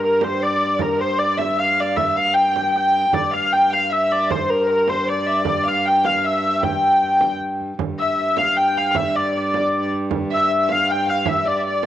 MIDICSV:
0, 0, Header, 1, 5, 480
1, 0, Start_track
1, 0, Tempo, 387597
1, 1001, Time_signature, 3, 2, 24, 8
1, 14687, End_track
2, 0, Start_track
2, 0, Title_t, "Hurdy-gurdy"
2, 0, Program_c, 0, 110
2, 48, Note_on_c, 0, 70, 76
2, 299, Note_off_c, 0, 70, 0
2, 299, Note_on_c, 0, 72, 84
2, 532, Note_off_c, 0, 72, 0
2, 532, Note_on_c, 0, 74, 85
2, 1013, Note_off_c, 0, 74, 0
2, 1013, Note_on_c, 0, 70, 74
2, 1246, Note_off_c, 0, 70, 0
2, 1246, Note_on_c, 0, 72, 83
2, 1469, Note_off_c, 0, 72, 0
2, 1469, Note_on_c, 0, 74, 86
2, 1709, Note_off_c, 0, 74, 0
2, 1709, Note_on_c, 0, 76, 87
2, 1971, Note_off_c, 0, 76, 0
2, 1971, Note_on_c, 0, 77, 92
2, 2229, Note_off_c, 0, 77, 0
2, 2229, Note_on_c, 0, 74, 86
2, 2431, Note_on_c, 0, 76, 85
2, 2457, Note_off_c, 0, 74, 0
2, 2681, Note_off_c, 0, 76, 0
2, 2681, Note_on_c, 0, 77, 91
2, 2900, Note_on_c, 0, 79, 87
2, 2924, Note_off_c, 0, 77, 0
2, 3418, Note_off_c, 0, 79, 0
2, 3418, Note_on_c, 0, 79, 93
2, 3885, Note_off_c, 0, 79, 0
2, 3885, Note_on_c, 0, 74, 82
2, 4134, Note_off_c, 0, 74, 0
2, 4134, Note_on_c, 0, 77, 82
2, 4371, Note_off_c, 0, 77, 0
2, 4371, Note_on_c, 0, 79, 84
2, 4621, Note_off_c, 0, 79, 0
2, 4621, Note_on_c, 0, 77, 82
2, 4858, Note_off_c, 0, 77, 0
2, 4858, Note_on_c, 0, 76, 87
2, 5100, Note_off_c, 0, 76, 0
2, 5100, Note_on_c, 0, 74, 78
2, 5342, Note_off_c, 0, 74, 0
2, 5342, Note_on_c, 0, 72, 71
2, 5574, Note_on_c, 0, 70, 79
2, 5576, Note_off_c, 0, 72, 0
2, 5822, Note_off_c, 0, 70, 0
2, 5822, Note_on_c, 0, 70, 70
2, 6062, Note_off_c, 0, 70, 0
2, 6062, Note_on_c, 0, 72, 76
2, 6298, Note_off_c, 0, 72, 0
2, 6298, Note_on_c, 0, 74, 85
2, 6793, Note_off_c, 0, 74, 0
2, 6793, Note_on_c, 0, 74, 80
2, 7036, Note_off_c, 0, 74, 0
2, 7036, Note_on_c, 0, 77, 89
2, 7279, Note_off_c, 0, 77, 0
2, 7279, Note_on_c, 0, 79, 83
2, 7501, Note_off_c, 0, 79, 0
2, 7501, Note_on_c, 0, 77, 83
2, 7654, Note_off_c, 0, 77, 0
2, 7654, Note_on_c, 0, 77, 60
2, 7751, Note_off_c, 0, 77, 0
2, 7751, Note_on_c, 0, 76, 85
2, 8220, Note_off_c, 0, 76, 0
2, 8220, Note_on_c, 0, 79, 79
2, 9125, Note_off_c, 0, 79, 0
2, 9899, Note_on_c, 0, 76, 94
2, 10378, Note_off_c, 0, 76, 0
2, 10378, Note_on_c, 0, 77, 93
2, 10612, Note_off_c, 0, 77, 0
2, 10612, Note_on_c, 0, 79, 100
2, 10865, Note_off_c, 0, 79, 0
2, 10865, Note_on_c, 0, 77, 92
2, 11031, Note_off_c, 0, 77, 0
2, 11031, Note_on_c, 0, 77, 64
2, 11101, Note_off_c, 0, 77, 0
2, 11101, Note_on_c, 0, 76, 82
2, 11348, Note_off_c, 0, 76, 0
2, 11348, Note_on_c, 0, 74, 80
2, 11603, Note_off_c, 0, 74, 0
2, 11603, Note_on_c, 0, 74, 67
2, 12253, Note_off_c, 0, 74, 0
2, 12811, Note_on_c, 0, 76, 96
2, 13274, Note_off_c, 0, 76, 0
2, 13274, Note_on_c, 0, 77, 95
2, 13510, Note_off_c, 0, 77, 0
2, 13510, Note_on_c, 0, 79, 107
2, 13737, Note_off_c, 0, 79, 0
2, 13737, Note_on_c, 0, 77, 92
2, 13969, Note_off_c, 0, 77, 0
2, 13969, Note_on_c, 0, 76, 78
2, 14209, Note_off_c, 0, 76, 0
2, 14209, Note_on_c, 0, 74, 83
2, 14444, Note_off_c, 0, 74, 0
2, 14444, Note_on_c, 0, 74, 71
2, 14687, Note_off_c, 0, 74, 0
2, 14687, End_track
3, 0, Start_track
3, 0, Title_t, "Violin"
3, 0, Program_c, 1, 40
3, 35, Note_on_c, 1, 70, 73
3, 287, Note_on_c, 1, 72, 68
3, 305, Note_off_c, 1, 70, 0
3, 522, Note_on_c, 1, 74, 75
3, 541, Note_off_c, 1, 72, 0
3, 1006, Note_on_c, 1, 70, 74
3, 1024, Note_off_c, 1, 74, 0
3, 1228, Note_on_c, 1, 72, 69
3, 1247, Note_off_c, 1, 70, 0
3, 1471, Note_on_c, 1, 74, 76
3, 1490, Note_off_c, 1, 72, 0
3, 1700, Note_on_c, 1, 76, 73
3, 1718, Note_off_c, 1, 74, 0
3, 1954, Note_on_c, 1, 77, 81
3, 1973, Note_off_c, 1, 76, 0
3, 2434, Note_on_c, 1, 76, 78
3, 2453, Note_off_c, 1, 77, 0
3, 2675, Note_on_c, 1, 77, 75
3, 2694, Note_off_c, 1, 76, 0
3, 2917, Note_on_c, 1, 79, 78
3, 2936, Note_off_c, 1, 77, 0
3, 3380, Note_off_c, 1, 79, 0
3, 3387, Note_on_c, 1, 79, 80
3, 3889, Note_on_c, 1, 74, 73
3, 3908, Note_off_c, 1, 79, 0
3, 4102, Note_on_c, 1, 77, 72
3, 4120, Note_off_c, 1, 74, 0
3, 4367, Note_on_c, 1, 79, 79
3, 4385, Note_off_c, 1, 77, 0
3, 4589, Note_on_c, 1, 77, 72
3, 4607, Note_off_c, 1, 79, 0
3, 4827, Note_on_c, 1, 76, 76
3, 4845, Note_off_c, 1, 77, 0
3, 5328, Note_on_c, 1, 72, 68
3, 5346, Note_off_c, 1, 76, 0
3, 5785, Note_on_c, 1, 70, 70
3, 5803, Note_off_c, 1, 72, 0
3, 6048, Note_on_c, 1, 72, 65
3, 6067, Note_off_c, 1, 70, 0
3, 6275, Note_off_c, 1, 72, 0
3, 6283, Note_on_c, 1, 74, 70
3, 6519, Note_on_c, 1, 76, 75
3, 6538, Note_off_c, 1, 74, 0
3, 6738, Note_off_c, 1, 76, 0
3, 6745, Note_on_c, 1, 74, 71
3, 6980, Note_on_c, 1, 77, 71
3, 6999, Note_off_c, 1, 74, 0
3, 7247, Note_on_c, 1, 79, 72
3, 7266, Note_off_c, 1, 77, 0
3, 7478, Note_on_c, 1, 77, 74
3, 7497, Note_off_c, 1, 79, 0
3, 7728, Note_on_c, 1, 76, 74
3, 7747, Note_off_c, 1, 77, 0
3, 8184, Note_off_c, 1, 76, 0
3, 8192, Note_on_c, 1, 79, 70
3, 9111, Note_off_c, 1, 79, 0
3, 9894, Note_on_c, 1, 76, 68
3, 10114, Note_off_c, 1, 76, 0
3, 10120, Note_on_c, 1, 76, 75
3, 10365, Note_on_c, 1, 77, 76
3, 10384, Note_off_c, 1, 76, 0
3, 10593, Note_on_c, 1, 79, 83
3, 10612, Note_off_c, 1, 77, 0
3, 11085, Note_on_c, 1, 76, 74
3, 11103, Note_off_c, 1, 79, 0
3, 11333, Note_on_c, 1, 74, 72
3, 11352, Note_off_c, 1, 76, 0
3, 11557, Note_off_c, 1, 74, 0
3, 11565, Note_on_c, 1, 74, 65
3, 12234, Note_off_c, 1, 74, 0
3, 12758, Note_on_c, 1, 76, 77
3, 13238, Note_on_c, 1, 77, 75
3, 13257, Note_off_c, 1, 76, 0
3, 13475, Note_off_c, 1, 77, 0
3, 13483, Note_on_c, 1, 79, 88
3, 13703, Note_off_c, 1, 79, 0
3, 13709, Note_on_c, 1, 77, 84
3, 13935, Note_on_c, 1, 76, 75
3, 13954, Note_off_c, 1, 77, 0
3, 14188, Note_on_c, 1, 74, 66
3, 14206, Note_off_c, 1, 76, 0
3, 14330, Note_off_c, 1, 74, 0
3, 14338, Note_on_c, 1, 76, 50
3, 14414, Note_on_c, 1, 74, 70
3, 14433, Note_off_c, 1, 76, 0
3, 14687, Note_off_c, 1, 74, 0
3, 14687, End_track
4, 0, Start_track
4, 0, Title_t, "Viola da gamba"
4, 0, Program_c, 2, 42
4, 0, Note_on_c, 2, 43, 58
4, 3874, Note_off_c, 2, 43, 0
4, 3882, Note_on_c, 2, 43, 62
4, 9646, Note_off_c, 2, 43, 0
4, 9654, Note_on_c, 2, 43, 64
4, 14687, Note_off_c, 2, 43, 0
4, 14687, End_track
5, 0, Start_track
5, 0, Title_t, "Frame drum"
5, 263, Note_on_c, 9, 64, 69
5, 387, Note_off_c, 9, 64, 0
5, 979, Note_on_c, 9, 64, 68
5, 1103, Note_off_c, 9, 64, 0
5, 1243, Note_on_c, 9, 64, 25
5, 1366, Note_off_c, 9, 64, 0
5, 1715, Note_on_c, 9, 64, 59
5, 1839, Note_off_c, 9, 64, 0
5, 2435, Note_on_c, 9, 64, 62
5, 2559, Note_off_c, 9, 64, 0
5, 2688, Note_on_c, 9, 64, 22
5, 2811, Note_off_c, 9, 64, 0
5, 2931, Note_on_c, 9, 64, 23
5, 3055, Note_off_c, 9, 64, 0
5, 3169, Note_on_c, 9, 64, 54
5, 3293, Note_off_c, 9, 64, 0
5, 3875, Note_on_c, 9, 64, 67
5, 3999, Note_off_c, 9, 64, 0
5, 5334, Note_on_c, 9, 64, 70
5, 5458, Note_off_c, 9, 64, 0
5, 5565, Note_on_c, 9, 64, 25
5, 5689, Note_off_c, 9, 64, 0
5, 6040, Note_on_c, 9, 64, 64
5, 6164, Note_off_c, 9, 64, 0
5, 6748, Note_on_c, 9, 64, 69
5, 6872, Note_off_c, 9, 64, 0
5, 7000, Note_on_c, 9, 64, 26
5, 7124, Note_off_c, 9, 64, 0
5, 7489, Note_on_c, 9, 64, 65
5, 7613, Note_off_c, 9, 64, 0
5, 8209, Note_on_c, 9, 64, 77
5, 8333, Note_off_c, 9, 64, 0
5, 8448, Note_on_c, 9, 64, 25
5, 8571, Note_off_c, 9, 64, 0
5, 8702, Note_on_c, 9, 64, 27
5, 8826, Note_off_c, 9, 64, 0
5, 8926, Note_on_c, 9, 64, 60
5, 9050, Note_off_c, 9, 64, 0
5, 9167, Note_on_c, 9, 64, 24
5, 9291, Note_off_c, 9, 64, 0
5, 9418, Note_on_c, 9, 64, 24
5, 9542, Note_off_c, 9, 64, 0
5, 9647, Note_on_c, 9, 64, 72
5, 9770, Note_off_c, 9, 64, 0
5, 10360, Note_on_c, 9, 64, 64
5, 10484, Note_off_c, 9, 64, 0
5, 10844, Note_on_c, 9, 64, 24
5, 10968, Note_off_c, 9, 64, 0
5, 11077, Note_on_c, 9, 64, 74
5, 11201, Note_off_c, 9, 64, 0
5, 11816, Note_on_c, 9, 64, 63
5, 11940, Note_off_c, 9, 64, 0
5, 12291, Note_on_c, 9, 64, 23
5, 12415, Note_off_c, 9, 64, 0
5, 12515, Note_on_c, 9, 64, 72
5, 12639, Note_off_c, 9, 64, 0
5, 13235, Note_on_c, 9, 64, 57
5, 13359, Note_off_c, 9, 64, 0
5, 13709, Note_on_c, 9, 64, 24
5, 13833, Note_off_c, 9, 64, 0
5, 13940, Note_on_c, 9, 64, 72
5, 14064, Note_off_c, 9, 64, 0
5, 14181, Note_on_c, 9, 64, 27
5, 14305, Note_off_c, 9, 64, 0
5, 14687, End_track
0, 0, End_of_file